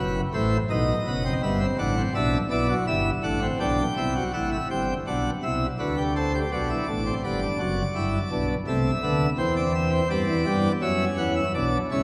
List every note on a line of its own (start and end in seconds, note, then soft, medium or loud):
0.00 0.20 F#1 medium
0.00 0.20 F#2 medium
0.00 0.20 F#4 medium
0.00 0.20 B4 medium
0.34 0.56 A1 medium
0.34 0.56 A2 medium
0.34 0.57 E4 medium
0.34 0.57 C5 medium
0.70 0.93 B1 medium
0.70 0.93 B2 medium
0.70 0.93 D#4 medium
0.70 1.33 D#5 medium
1.07 1.29 F#1 medium
1.07 1.29 F#2 medium
1.07 1.23 B3 medium
1.25 1.41 C4 medium
1.43 1.65 G1 medium
1.43 1.65 G2 medium
1.43 1.58 B3 medium
1.43 1.65 E5 loud
1.61 1.76 C4 medium
1.79 2.01 A1 medium
1.79 2.01 A2 medium
1.79 1.94 D4 medium
1.79 2.01 F#5 medium
1.97 2.13 C4 medium
2.15 2.37 B1 medium
2.15 2.37 B2 medium
2.15 2.37 D4 medium
2.15 2.37 E5 loud
2.51 2.73 B1 medium
2.51 2.74 B2 medium
2.51 2.67 E4 medium
2.51 2.73 D5 medium
2.69 2.85 F#4 medium
2.87 3.10 G1 medium
2.87 3.10 G2 medium
2.87 3.10 E4 medium
2.87 3.10 E5 medium
3.23 3.46 A1 medium
3.23 3.46 A2 medium
3.23 3.39 D4 medium
3.23 3.46 F#5 medium
3.42 3.58 C4 medium
3.60 3.83 B1 medium
3.60 3.83 B2 medium
3.60 3.83 D4 medium
3.60 4.23 G5 loud
3.97 4.20 C2 medium
3.97 4.20 C3 medium
3.97 4.13 E4 medium
4.16 4.31 F#4 medium
4.33 4.56 A1 medium
4.33 4.56 A2 medium
4.33 4.56 E4 medium
4.33 4.49 F#5 medium
4.52 4.68 E5 medium
4.70 4.93 G1 medium
4.70 4.93 G2 medium
4.70 4.93 C4 medium
4.70 4.93 G5 medium
5.07 5.30 B1 medium
5.07 5.30 B2 medium
5.07 5.30 D4 medium
5.07 5.30 F#5 medium
5.43 5.66 C2 medium
5.43 5.66 C3 medium
5.43 5.66 E4 medium
5.43 5.66 E5 medium
5.79 6.42 D2 medium
5.79 6.42 D3 medium
5.79 5.95 F#4 medium
5.79 6.02 B4 medium
5.97 6.13 G4 medium
6.16 6.32 A4 medium
6.16 6.38 C5 medium
6.34 6.50 G4 medium
6.52 6.75 B1 medium
6.52 6.74 B2 medium
6.52 6.68 F#4 medium
6.52 7.14 D5 medium
6.70 6.85 E4 medium
6.88 7.10 A1 medium
6.88 7.10 A2 medium
6.88 7.03 D4 medium
7.06 7.21 C4 medium
7.24 7.46 G1 medium
7.24 7.47 G2 medium
7.24 7.39 B3 medium
7.24 8.48 D5 medium
7.42 7.57 D4 medium
7.60 7.82 F#1 medium
7.60 7.82 F#2 medium
7.60 7.82 F#4 medium
7.95 8.18 G1 medium
7.95 8.18 G2 medium
7.95 8.18 E4 medium
8.31 8.54 B1 medium
8.31 8.54 B2 medium
8.31 8.54 D4 medium
8.67 8.90 C2 medium
8.67 8.90 C3 medium
8.67 8.90 A3 medium
8.67 9.29 E5 medium
9.03 9.25 D2 medium
9.03 9.25 D3 medium
9.03 9.25 B3 medium
9.38 10.00 E2 medium
9.38 10.00 E3 medium
9.38 10.00 C4 medium
9.38 9.54 C5 medium
9.57 9.72 D5 medium
9.75 9.90 E5 medium
9.92 10.08 C5 medium
10.10 10.26 G2 medium
10.10 10.26 G3 medium
10.10 10.72 B3 medium
10.10 10.72 D5 medium
10.29 10.44 E2 medium
10.29 10.44 E3 medium
10.46 10.68 G2 medium
10.46 10.68 G3 medium
10.82 11.04 F#2 medium
10.82 11.04 F#3 medium
10.82 11.44 C#4 medium
10.82 11.04 E5 medium
11.18 11.40 E2 medium
11.18 11.40 E3 medium
11.18 11.33 F#5 medium
11.36 11.52 E5 medium
11.55 11.77 B1 medium
11.55 11.78 B2 medium
11.55 11.78 D4 medium
11.55 11.78 D5 medium
11.91 12.03 C#2 medium
11.91 12.03 C#3 medium
11.91 12.03 E4 medium
11.91 12.03 C#5 medium